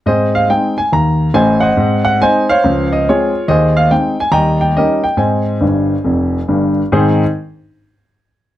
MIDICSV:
0, 0, Header, 1, 2, 480
1, 0, Start_track
1, 0, Key_signature, -4, "major"
1, 0, Tempo, 427960
1, 66, Time_signature, 4, 2, 24, 8
1, 9618, End_track
2, 0, Start_track
2, 0, Title_t, "Grand piano"
2, 0, Program_c, 0, 0
2, 66, Note_on_c, 0, 44, 56
2, 75, Note_on_c, 0, 75, 80
2, 89, Note_on_c, 0, 72, 53
2, 90, Note_on_c, 0, 68, 53
2, 91, Note_on_c, 0, 60, 37
2, 265, Control_c, 0, 64, 127
2, 348, Note_off_c, 0, 60, 0
2, 363, Note_off_c, 0, 72, 0
2, 364, Note_off_c, 0, 68, 0
2, 377, Note_off_c, 0, 75, 0
2, 393, Note_on_c, 0, 77, 75
2, 473, Note_off_c, 0, 44, 0
2, 554, Control_c, 0, 64, 0
2, 556, Note_off_c, 0, 77, 0
2, 557, Note_on_c, 0, 60, 40
2, 561, Note_on_c, 0, 56, 40
2, 561, Note_on_c, 0, 79, 74
2, 565, Note_on_c, 0, 63, 43
2, 817, Note_off_c, 0, 60, 0
2, 821, Note_off_c, 0, 56, 0
2, 823, Note_off_c, 0, 63, 0
2, 872, Note_on_c, 0, 80, 71
2, 873, Note_off_c, 0, 79, 0
2, 1029, Note_off_c, 0, 80, 0
2, 1037, Note_on_c, 0, 39, 50
2, 1044, Note_on_c, 0, 82, 78
2, 1440, Note_off_c, 0, 39, 0
2, 1503, Note_on_c, 0, 45, 64
2, 1505, Note_on_c, 0, 33, 66
2, 1506, Note_on_c, 0, 80, 86
2, 1514, Note_off_c, 0, 82, 0
2, 1518, Note_on_c, 0, 72, 67
2, 1520, Note_on_c, 0, 75, 64
2, 1797, Note_off_c, 0, 72, 0
2, 1798, Note_off_c, 0, 75, 0
2, 1799, Note_on_c, 0, 78, 84
2, 1812, Note_off_c, 0, 80, 0
2, 1822, Note_on_c, 0, 72, 60
2, 1824, Note_on_c, 0, 75, 63
2, 1888, Note_off_c, 0, 45, 0
2, 1889, Note_off_c, 0, 33, 0
2, 1985, Note_on_c, 0, 44, 66
2, 2006, Note_on_c, 0, 60, 42
2, 2193, Control_c, 0, 64, 127
2, 2264, Note_off_c, 0, 60, 0
2, 2264, Note_off_c, 0, 72, 0
2, 2265, Note_off_c, 0, 75, 0
2, 2278, Note_off_c, 0, 78, 0
2, 2295, Note_on_c, 0, 78, 89
2, 2393, Note_off_c, 0, 44, 0
2, 2467, Note_off_c, 0, 78, 0
2, 2476, Control_c, 0, 64, 0
2, 2485, Note_on_c, 0, 56, 41
2, 2486, Note_on_c, 0, 80, 94
2, 2489, Note_on_c, 0, 60, 41
2, 2494, Note_on_c, 0, 63, 53
2, 2496, Note_on_c, 0, 72, 74
2, 2499, Note_on_c, 0, 75, 72
2, 2744, Note_off_c, 0, 56, 0
2, 2747, Note_off_c, 0, 60, 0
2, 2750, Note_off_c, 0, 63, 0
2, 2767, Note_off_c, 0, 72, 0
2, 2769, Note_off_c, 0, 75, 0
2, 2782, Note_off_c, 0, 80, 0
2, 2798, Note_on_c, 0, 77, 92
2, 2808, Note_on_c, 0, 72, 66
2, 2812, Note_on_c, 0, 73, 71
2, 2960, Note_on_c, 0, 37, 73
2, 2979, Note_on_c, 0, 53, 46
2, 3165, Control_c, 0, 64, 127
2, 3234, Note_off_c, 0, 53, 0
2, 3238, Note_off_c, 0, 72, 0
2, 3241, Note_off_c, 0, 73, 0
2, 3266, Note_off_c, 0, 77, 0
2, 3282, Note_on_c, 0, 75, 77
2, 3362, Note_off_c, 0, 37, 0
2, 3436, Control_c, 0, 64, 0
2, 3441, Note_off_c, 0, 75, 0
2, 3462, Note_on_c, 0, 56, 47
2, 3467, Note_on_c, 0, 73, 80
2, 3469, Note_on_c, 0, 60, 45
2, 3470, Note_on_c, 0, 65, 66
2, 3475, Note_on_c, 0, 68, 64
2, 3717, Note_off_c, 0, 56, 0
2, 3721, Note_off_c, 0, 60, 0
2, 3897, Note_off_c, 0, 65, 0
2, 3899, Note_off_c, 0, 68, 0
2, 3906, Note_on_c, 0, 39, 72
2, 3907, Note_on_c, 0, 75, 86
2, 3919, Note_on_c, 0, 72, 68
2, 3927, Note_off_c, 0, 73, 0
2, 3932, Note_on_c, 0, 68, 63
2, 4099, Control_c, 0, 64, 127
2, 4199, Note_off_c, 0, 72, 0
2, 4206, Note_off_c, 0, 68, 0
2, 4214, Note_off_c, 0, 75, 0
2, 4224, Note_on_c, 0, 77, 84
2, 4315, Note_off_c, 0, 39, 0
2, 4375, Note_on_c, 0, 56, 37
2, 4386, Note_on_c, 0, 79, 75
2, 4387, Note_on_c, 0, 63, 44
2, 4393, Note_off_c, 0, 77, 0
2, 4393, Note_on_c, 0, 60, 44
2, 4401, Control_c, 0, 64, 0
2, 4643, Note_off_c, 0, 56, 0
2, 4651, Note_off_c, 0, 63, 0
2, 4656, Note_off_c, 0, 60, 0
2, 4708, Note_off_c, 0, 79, 0
2, 4715, Note_on_c, 0, 80, 79
2, 4841, Note_on_c, 0, 39, 64
2, 4842, Note_on_c, 0, 82, 91
2, 4854, Note_on_c, 0, 79, 69
2, 4860, Note_on_c, 0, 75, 65
2, 4861, Note_on_c, 0, 55, 39
2, 4872, Note_off_c, 0, 80, 0
2, 5106, Control_c, 0, 64, 127
2, 5127, Note_off_c, 0, 55, 0
2, 5146, Note_off_c, 0, 79, 0
2, 5150, Note_off_c, 0, 75, 0
2, 5162, Note_off_c, 0, 82, 0
2, 5169, Note_on_c, 0, 79, 69
2, 5261, Note_off_c, 0, 39, 0
2, 5345, Note_on_c, 0, 55, 38
2, 5346, Note_off_c, 0, 79, 0
2, 5347, Note_on_c, 0, 75, 75
2, 5350, Note_on_c, 0, 63, 41
2, 5353, Note_on_c, 0, 61, 37
2, 5358, Control_c, 0, 64, 0
2, 5360, Note_on_c, 0, 67, 58
2, 5362, Note_on_c, 0, 70, 58
2, 5610, Note_off_c, 0, 55, 0
2, 5614, Note_off_c, 0, 63, 0
2, 5616, Note_off_c, 0, 61, 0
2, 5641, Note_off_c, 0, 67, 0
2, 5641, Note_off_c, 0, 70, 0
2, 5648, Note_on_c, 0, 79, 69
2, 5655, Note_off_c, 0, 75, 0
2, 5797, Note_on_c, 0, 44, 56
2, 5805, Note_on_c, 0, 80, 63
2, 5814, Note_on_c, 0, 72, 43
2, 5817, Note_on_c, 0, 75, 48
2, 5820, Note_on_c, 0, 60, 34
2, 5826, Note_off_c, 0, 79, 0
2, 6063, Control_c, 0, 64, 127
2, 6087, Note_off_c, 0, 60, 0
2, 6219, Note_off_c, 0, 44, 0
2, 6286, Note_on_c, 0, 43, 49
2, 6290, Note_on_c, 0, 31, 49
2, 6319, Control_c, 0, 64, 0
2, 6655, Note_off_c, 0, 43, 0
2, 6658, Note_off_c, 0, 31, 0
2, 6780, Note_on_c, 0, 41, 48
2, 6783, Note_on_c, 0, 29, 53
2, 7144, Note_off_c, 0, 41, 0
2, 7146, Note_off_c, 0, 29, 0
2, 7272, Note_on_c, 0, 31, 51
2, 7272, Note_on_c, 0, 43, 53
2, 7524, Note_off_c, 0, 72, 0
2, 7525, Note_off_c, 0, 75, 0
2, 7564, Note_off_c, 0, 80, 0
2, 7631, Note_off_c, 0, 31, 0
2, 7631, Note_off_c, 0, 43, 0
2, 7763, Note_on_c, 0, 44, 75
2, 7764, Note_on_c, 0, 51, 59
2, 7769, Note_on_c, 0, 60, 64
2, 7770, Note_on_c, 0, 68, 71
2, 7772, Note_on_c, 0, 72, 67
2, 7774, Note_on_c, 0, 63, 62
2, 7918, Control_c, 0, 64, 127
2, 8074, Note_off_c, 0, 44, 0
2, 8075, Note_off_c, 0, 51, 0
2, 8077, Note_off_c, 0, 60, 0
2, 8078, Note_off_c, 0, 68, 0
2, 8079, Note_off_c, 0, 72, 0
2, 8080, Note_off_c, 0, 63, 0
2, 8107, Control_c, 0, 64, 0
2, 9618, End_track
0, 0, End_of_file